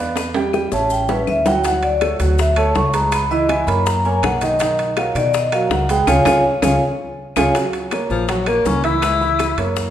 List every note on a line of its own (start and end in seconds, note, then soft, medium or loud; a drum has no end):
0.00 0.66 E2 medium
0.00 0.29 B3 medium
0.00 0.29 B4 medium
0.00 0.29 D5 medium
0.00 0.13 F5 medium
0.16 high bongo medium
0.16 high timbale medium
0.16 claves medium
0.16 maracas medium
0.34 0.50 G3 medium
0.34 0.51 G4 medium
0.34 0.51 G5 medium
0.34 high timbale loud
0.34 maracas soft
0.53 0.69 G3 medium
0.53 0.69 G4 medium
0.53 0.69 G5 medium
0.53 high bongo medium
0.53 claves medium
0.53 maracas soft
0.72 1.23 A1 medium
0.72 1.03 C#4 medium
0.72 1.03 C#5 medium
0.72 1.03 E5 medium
0.72 0.91 A5 medium
0.72 high bongo medium
0.72 maracas medium
0.90 1.09 G5 medium
0.90 maracas medium
1.09 1.39 C#4 medium
1.09 1.27 B4 medium
1.09 1.40 C#5 medium
1.09 1.40 E5 medium
1.09 high bongo medium
1.09 low timbale medium
1.09 maracas soft
1.27 2.14 D2 medium
1.27 1.46 E5 medium
1.27 low bongo medium
1.27 claves medium
1.27 maracas soft
1.46 1.61 F#3 medium
1.46 1.62 F#4 medium
1.46 1.62 F#5 medium
1.46 1.65 G5 loud
1.46 low bongo medium
1.46 low timbale medium
1.46 maracas medium
1.64 1.95 F#3 medium
1.64 1.95 F#4 medium
1.64 1.95 F#5 medium
1.64 1.83 F#5 medium
1.64 high bongo medium
1.64 high timbale medium
1.64 maracas medium
1.82 1.94 D5 loud
1.82 high timbale medium
1.82 maracas soft
2.01 2.16 A3 medium
2.01 2.17 A4 medium
2.01 2.17 C#5 medium
2.01 high bongo medium
2.01 high timbale medium
2.01 claves medium
2.01 maracas soft
2.20 2.71 D2 loud
2.20 2.50 F#3 medium
2.20 2.50 F#4 medium
2.20 2.51 F#5 medium
2.20 high timbale medium
2.20 maracas medium
2.38 2.57 E5 medium
2.38 high bongo medium
2.38 maracas medium
2.56 2.87 A3 medium
2.56 2.88 A4 medium
2.56 2.88 C#5 medium
2.56 2.75 A5 medium
2.56 high timbale medium
2.56 claves medium
2.56 maracas soft
2.75 3.62 C#2 medium
2.75 2.94 C#6 loud
2.75 high bongo medium
2.75 low bongo medium
2.75 low timbale medium
2.75 maracas soft
2.93 3.24 G#3 medium
2.93 3.24 G#4 medium
2.93 3.24 B4 medium
2.93 3.12 A#5 loud
2.93 high timbale medium
2.93 maracas medium
3.12 3.31 B5 loud
3.12 high bongo medium
3.12 high timbale loud
3.12 claves medium
3.12 maracas medium
3.31 3.46 E3 medium
3.31 3.46 E4 medium
3.31 3.49 D#5 medium
3.31 3.46 E5 medium
3.31 maracas soft
3.49 3.64 E3 medium
3.49 3.64 E4 medium
3.49 3.64 E5 medium
3.49 3.67 G#5 medium
3.49 high bongo medium
3.49 high timbale medium
3.49 claves medium
3.49 maracas soft
3.67 4.19 F#2 loud
3.67 3.98 A#3 medium
3.67 3.98 A#4 medium
3.67 3.98 C#5 medium
3.67 3.85 B5 loud
3.67 high bongo soft
3.67 high timbale medium
3.67 maracas medium
3.86 4.04 A#5 medium
3.86 high bongo medium
3.86 maracas medium
4.05 4.35 A#3 medium
4.05 4.36 A#4 medium
4.05 4.36 C#5 medium
4.05 4.23 G#5 medium
4.05 high bongo soft
4.05 maracas soft
4.22 5.09 B1 loud
4.22 4.41 F#5 medium
4.22 high bongo medium
4.22 low bongo medium
4.22 high timbale medium
4.22 claves medium
4.22 maracas soft
4.41 4.57 D#3 medium
4.41 4.57 D#4 medium
4.41 4.76 D#5 medium
4.41 4.58 D#5 medium
4.41 high bongo soft
4.41 high timbale medium
4.41 maracas medium
4.59 4.91 D#3 medium
4.59 4.91 D#4 medium
4.59 4.91 D#5 medium
4.59 high bongo medium
4.59 high timbale medium
4.59 maracas medium
4.79 high timbale medium
4.79 maracas soft
4.97 5.13 F#3 medium
4.97 5.13 F#4 medium
4.97 5.13 A#4 medium
4.97 5.15 F5 medium
4.97 high bongo medium
4.97 high timbale medium
4.97 claves medium
4.97 maracas soft
5.15 5.66 B2 loud
5.15 5.46 D#3 medium
5.15 5.46 D#4 medium
5.15 5.33 D5 loud
5.15 5.46 D#5 medium
5.15 high timbale medium
5.15 maracas medium
5.34 5.52 D#5 medium
5.34 high bongo medium
5.34 maracas medium
5.52 5.83 F#3 medium
5.52 5.83 F#4 medium
5.52 5.83 A#4 medium
5.52 5.70 F5 medium
5.52 high timbale loud
5.52 claves medium
5.52 maracas soft
5.70 6.05 C#2 medium
5.70 5.89 F#5 medium
5.70 high bongo medium
5.70 low bongo medium
5.70 maracas soft
5.89 6.05 G#3 medium
5.89 6.05 G#4 medium
5.89 6.05 B4 medium
5.89 6.07 G5 loud
5.89 high timbale medium
5.89 maracas medium
6.07 6.21 C#2 loud
6.07 6.19 C#4 medium
6.07 6.19 F4 loud
6.07 6.20 G#4 medium
6.07 6.20 C#5 loud
6.07 6.20 F5 loud
6.07 6.20 G#5 loud
6.07 low bongo medium
6.07 high timbale loud
6.07 claves loud
6.07 maracas loud
6.25 6.39 C#2 medium
6.25 6.38 C#4 medium
6.25 6.38 F4 loud
6.25 6.38 G#4 loud
6.25 6.38 C#5 loud
6.25 6.38 F5 loud
6.25 6.38 G#5 loud
6.25 low bongo loud
6.25 high timbale loud
6.25 claves loud
6.25 maracas loud
6.62 6.76 C#2 loud
6.62 6.75 C#4 medium
6.62 6.75 F4 medium
6.62 6.75 G#4 medium
6.62 6.75 C#5 medium
6.62 6.75 F5 medium
6.62 6.75 G#5 medium
6.62 low bongo loud
6.62 high timbale loud
6.62 claves medium
6.62 maracas loud
7.36 7.50 C#2 medium
7.36 7.49 C#4 medium
7.36 7.49 F4 medium
7.36 7.49 G#4 loud
7.36 7.49 C#5 loud
7.36 7.49 F5 medium
7.36 7.49 G#5 loud
7.36 low bongo medium
7.36 high timbale loud
7.36 claves loud
7.36 maracas loud
7.55 7.86 F#3 medium
7.55 7.86 F#4 medium
7.55 7.86 F#5 medium
7.55 high bongo medium
7.55 high timbale medium
7.55 maracas medium
7.73 high timbale medium
7.73 maracas soft
7.91 8.23 A#3 medium
7.91 8.23 A#4 medium
7.91 8.23 C#5 medium
7.91 high bongo medium
7.91 high timbale medium
7.91 low timbale medium
7.91 claves medium
7.91 maracas medium
8.10 8.62 A#1 loud
8.10 8.31 F3 medium
8.10 high bongo soft
8.10 maracas soft
8.28 8.50 F#3 medium
8.28 8.44 F#3 medium
8.28 8.44 F#4 medium
8.28 8.44 F#5 medium
8.28 high bongo medium
8.28 high timbale medium
8.28 maracas medium
8.46 8.68 A#3 medium
8.46 8.78 A#3 medium
8.46 8.78 A#4 medium
8.46 8.78 C#5 medium
8.46 high bongo soft
8.46 high timbale medium
8.46 claves medium
8.46 maracas soft
8.65 9.52 C#2 medium
8.65 8.84 C#4 medium
8.65 high bongo soft
8.65 low bongo medium
8.65 low timbale medium
8.65 maracas medium
8.84 8.99 E3 medium
8.84 9.00 E4 medium
8.84 9.73 E4 medium
8.84 9.00 E5 medium
8.84 high bongo soft
8.84 high timbale medium
8.84 maracas soft
9.02 9.18 G#3 medium
9.02 9.18 G#4 medium
9.02 9.18 B4 medium
9.02 high bongo medium
9.02 high timbale medium
9.02 claves medium
9.02 maracas medium
9.21 9.51 E3 medium
9.21 9.52 E4 medium
9.21 9.52 E5 medium
9.21 maracas soft
9.39 high bongo medium
9.39 high timbale medium
9.39 low timbale medium
9.39 claves medium
9.39 maracas medium
9.57 9.90 F#2 medium
9.57 9.89 A#3 medium
9.57 9.89 A#4 medium
9.57 9.89 C#5 medium
9.57 high bongo soft
9.57 high timbale medium
9.57 maracas soft
9.76 high bongo medium
9.76 maracas medium